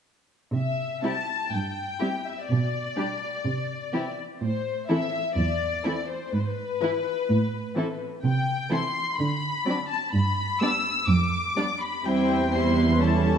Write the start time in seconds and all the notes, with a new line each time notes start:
0.54 C3 E5
1.03 G3 C4 E4 G4 A5
1.52 G2 G5
2.00 G3 C4 E4 G4
2.26 E5
2.49 B2 D5
2.97 G3 D4 G4
3.46 C3
3.93 E3 C4 E4 G4
4.41 A2 C5
4.89 E3 C4 E4 A4 E5
5.37 E2 D5
5.85 E3 C4 E4 A4
6.09 C5
6.32 G#2 B4
6.40 C5
6.46 B4
6.81 E3 E4 B4
7.29 A2
7.76 E3 C4 E4 A4
8.24 C3 G5
8.71 E3 C4 E4 A4 C6
9.18 D3 B5
9.66 F#3 C4 D4 D5
9.90 A5
10.13 G2 B5
10.60 G3 B3 D4 D5 E6
11.08 F2 D6
11.56 G3 B3 D4 D5
11.79 B5
12.04 E2 G3 C4 E4 C5 G5
12.52 G3 C4 E4 C5 C6
12.77 B4
13.00 G3 C#4 E4 A4 A5